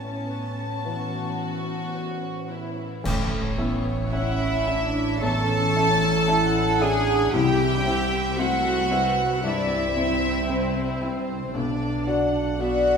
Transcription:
Already playing: A1 A2 B3 C#4 E4 C#5 A5
0.30 B4
0.84 E3 E4 F#4 B4
1.40 E4
1.95 C#5
2.50 E4 B4
3.04 A1 A2 A3 C#5, concert bass drum, crash
3.58 B3 C#4 E4 E5
4.12 C#4 E4 C#5 E5 F#5
4.67 C#4 D4 E4 E5
5.21 E2 E3 C#4 A4 C#5 A5
5.75 C#4 E4 E5
6.27 C#4 E4 C#5 E5 F#5
6.80 C#4 D4 E4 G#4 E5 G#5
7.33 C2 C3 E4 G4 E5 G5
7.86 C4 E4 E5
8.38 A3 C4 E4 F#4 C5 E5 F#5
8.91 C4 E4 B4 E5
9.43 G2 G3 C4 E4 D5 E5
9.97 C4 E4 C5 E5
10.49 C4 E4 C5 E5
11.02 C4 E4 E5
11.55 B1 B2 D4 D5
12.07 B3 D4 F#4 D5 F#5
12.59 B3 D4 F#4 D5 E5 F#5

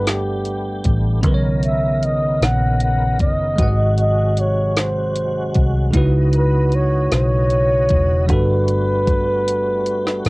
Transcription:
Already playing: G1 G3 A3 B3 D4 G4 A4 B4 F#5
0.07 G4, snare, closed hi-hat
0.45 closed hi-hat
0.84 A1, kick, closed hi-hat
1.21 B1 C#3 D#3 B3 A#4, kick, closed hi-hat
1.26 A#4 B4
1.34 C#5
1.63 E5, closed hi-hat
2.03 D#5, closed hi-hat
2.41 A#1 F#5, snare, closed hi-hat
2.80 F#5, closed hi-hat
3.19 F#1 D#5, kick, closed hi-hat
3.56 G#1 C3 D#3 F#3 G#3 F#4, kick, closed hi-hat
3.61 B4 F#5
3.68 D#5
3.98 D#5, closed hi-hat
4.37 C#5, closed hi-hat
4.77 C5, snare, closed hi-hat
5.16 closed hi-hat
5.54 C2, kick, closed hi-hat
5.91 C#2 C#3 G#3 B3 D#4 E4 D#5, kick, closed hi-hat
5.96 F#4 B4
6.33 B4, closed hi-hat
6.72 C#5, closed hi-hat
7.12 B1 C#5, snare, closed hi-hat
7.50 closed hi-hat
7.89 E1, kick, closed hi-hat
8.26 G1 G3 A3 D4 F#4, kick, closed hi-hat
8.31 A4 B4
8.68 closed hi-hat
9.07 kick, closed hi-hat
9.48 closed hi-hat
9.86 closed hi-hat
10.07 snare
10.25 A1, closed hi-hat

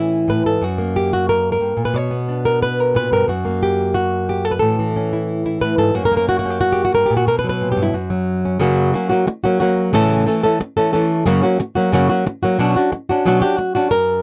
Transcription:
Already playing: A2 E3 C#4 E4
0.28 A2 B4
0.46 G#2 A4
0.62 F#2 F#4
0.78 A#3
0.96 G4
1.13 F#4
1.29 A#4
1.52 A#4
1.61 G2
1.77 A#2
1.85 B4
1.94 B2 C#5
2.11 B3
2.28 D4
2.45 A#4
2.62 B4
2.80 A#4
2.94 A#2 B4
3.12 G2 A#4
3.28 F#2 F#4
3.45 A#3
3.63 G4
3.94 F#4
4.29 G4
4.45 A4
4.51 B4
4.59 A2 E3 C#4 A4
4.79 E3
4.96 C#4
5.13 E4
5.46 E4
5.61 A2 B4
5.78 G#2 A4
5.94 F#2 A#3 C#4 F#4
6.05 A#4
6.12 A#3
6.17 A#4
6.29 F#4
6.39 F#4
6.45 C#4
6.50 G4
6.61 F#4
6.72 G4
6.85 F#4
6.94 G2 A#4
7.06 G4
7.10 A#2
7.17 F#4
7.27 B2 A#4
7.39 B4
7.44 F#3
7.49 B4
7.61 A#2
7.72 G4
7.77 G2
7.83 E4
7.93 F#2 F#4
8.10 F#3
8.45 C#4
8.60 F#2 C#3 F#3 A#3 C#4 F#4
8.93 F#3 A#3 C#4 F#4
9.09 F#3 A#3 C#4 F#4
9.27 muted nylon-string guitar stroke
9.44 F#3 A#3 C#4 F#4
9.60 F#3 A#3 C#4 F#4
9.93 A2 C#3 E3 A3 C#4 A4
10.26 E3 A3 C#4 A4
10.43 E3 A3 C#4 A4
10.60 muted nylon-string guitar stroke
10.77 E3 A3 C#4 A4
10.93 E3 A3 C#4 A4
11.26 F#2 C#3 F#3 A#3 C#4 F#4
11.43 F#3 A#3 C#4 F#4
11.59 muted nylon-string guitar stroke
11.75 F#3 A#3 C#4 F#4
11.92 F#2 C#3 F#3 A#3 C#4 F#4
12.10 F#3 A#3 C#4 F#4
12.26 muted nylon-string guitar stroke
12.43 F#3 A#3 C#4 F#4
12.59 B2 F#3 C#4 D4 F#4
12.76 C#4 D4 F#4
12.92 muted nylon-string guitar stroke
13.09 C#4 D4 F#4
13.26 B2 F#3 C#4 D4 F#4
13.41 C#4 D4 F#4 G4
13.57 F#4, muted nylon-string guitar stroke
13.75 C#4 D4 F#4
13.91 F#2 A#4

